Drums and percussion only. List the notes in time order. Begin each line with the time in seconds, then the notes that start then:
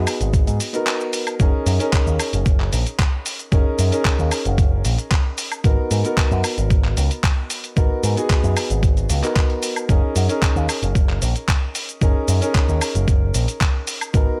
0.07 open hi-hat, cabasa, high woodblock
0.21 closed hi-hat, cabasa
0.34 kick, closed hi-hat, cabasa
0.47 closed hi-hat, cabasa
0.60 open hi-hat, cabasa
0.74 closed hi-hat, cabasa
0.87 clap, closed hi-hat, cabasa
1.00 cabasa
1.13 open hi-hat, cabasa
1.27 closed hi-hat, cabasa, high woodblock
1.40 kick, closed hi-hat, cabasa
1.66 open hi-hat, cabasa
1.80 closed hi-hat, cabasa
1.93 kick, clap, closed hi-hat, cabasa
2.07 cabasa
2.19 open hi-hat, cabasa, high woodblock
2.33 closed hi-hat, cabasa
2.46 kick, closed hi-hat, cabasa
2.60 clap
2.73 open hi-hat, cabasa
2.87 closed hi-hat, cabasa
2.99 kick, clap, closed hi-hat, cabasa
3.26 open hi-hat, cabasa
3.39 closed hi-hat, cabasa
3.52 kick, closed hi-hat, cabasa
3.79 open hi-hat, cabasa
3.92 closed hi-hat, cabasa
4.05 kick, clap, closed hi-hat, cabasa
4.19 cabasa
4.31 open hi-hat, cabasa, high woodblock
4.45 closed hi-hat, cabasa
4.58 kick, closed hi-hat, cabasa
4.85 open hi-hat, cabasa
4.98 closed hi-hat, cabasa
5.11 kick, clap, closed hi-hat, cabasa
5.38 open hi-hat, cabasa
5.52 closed hi-hat, cabasa, high woodblock
5.64 kick, closed hi-hat, cabasa
5.91 open hi-hat, cabasa
6.05 closed hi-hat, cabasa
6.17 kick, clap, closed hi-hat, cabasa
6.31 cabasa
6.44 open hi-hat, cabasa, high woodblock
6.58 closed hi-hat, cabasa
6.70 kick, closed hi-hat, cabasa
6.85 clap
6.97 open hi-hat, cabasa
7.11 closed hi-hat, cabasa
7.24 kick, clap, closed hi-hat, cabasa
7.50 open hi-hat, cabasa
7.64 closed hi-hat, cabasa
7.77 kick, closed hi-hat, cabasa
8.04 open hi-hat, cabasa
8.17 closed hi-hat, cabasa
8.30 kick, clap, closed hi-hat, cabasa
8.44 cabasa
8.57 open hi-hat, cabasa, high woodblock
8.70 closed hi-hat, cabasa
8.83 kick, closed hi-hat, cabasa
8.97 closed hi-hat, cabasa
9.10 open hi-hat, cabasa
9.23 clap, closed hi-hat, cabasa
9.36 kick, clap, closed hi-hat, cabasa
9.50 closed hi-hat
9.63 open hi-hat, cabasa
9.76 closed hi-hat, cabasa, high woodblock
9.89 kick, closed hi-hat, cabasa
10.16 open hi-hat, cabasa
10.29 closed hi-hat, cabasa
10.42 kick, clap, closed hi-hat, cabasa
10.56 cabasa
10.69 open hi-hat, cabasa, high woodblock
10.83 closed hi-hat, cabasa
10.95 kick, closed hi-hat, cabasa
11.09 clap
11.22 open hi-hat, cabasa
11.36 closed hi-hat, cabasa
11.48 kick, clap, closed hi-hat, cabasa
11.75 open hi-hat, cabasa
11.89 closed hi-hat, cabasa
12.02 kick, closed hi-hat, cabasa
12.28 open hi-hat, cabasa
12.42 closed hi-hat, cabasa
12.55 kick, clap, closed hi-hat, cabasa
12.69 cabasa
12.81 open hi-hat, cabasa, high woodblock
12.95 closed hi-hat, cabasa
13.08 kick, closed hi-hat, cabasa
13.34 open hi-hat, cabasa
13.48 closed hi-hat, cabasa
13.61 kick, clap, closed hi-hat, cabasa
13.87 open hi-hat, cabasa
14.01 closed hi-hat, cabasa, high woodblock
14.14 kick, closed hi-hat, cabasa